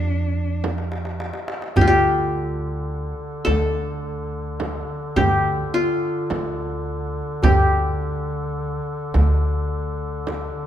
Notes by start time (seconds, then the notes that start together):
Already playing: F2 D4
0.08 darbuka ka
0.64 darbuka tek, frame drum
0.78 darbuka ka
0.92 darbuka tek
1.05 darbuka ka
1.20 darbuka tek
1.34 darbuka ka
1.48 darbuka tek
1.62 darbuka ka
1.75 D2 D3 G4, darbuka dum, frame drum
1.81 F4
1.87 G4
3.45 D2 A4, darbuka tek, frame drum
4.60 darbuka tek, frame drum
5.16 D2 G4, darbuka dum, frame drum
5.74 F4
6.30 D2, darbuka tek, frame drum
7.43 D2 G4, darbuka dum, frame drum
9.14 D2, darbuka tek, frame drum
10.27 darbuka tek, frame drum